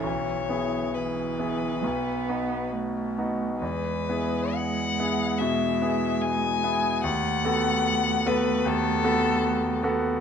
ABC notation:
X:1
M:4/4
L:1/8
Q:1/4=72
K:E
V:1 name="Violin"
c2 B4 z2 | B2 f2 e2 g2 | f3 B A3 z |]
V:2 name="Grand piano"
B,,, [B,EG]2 [B,EG] B,,, [B,DF]2 [B,DF] | E,, [B,EG]2 [B,EG] B,, [B,EG]2 [B,EG] | D,, [B,FA]2 [B,FA] D,, [B,FA]2 [B,FA] |]
V:3 name="Cello" clef=bass
E,2 E,2 B,2 A,2 | G,8 | A,8 |]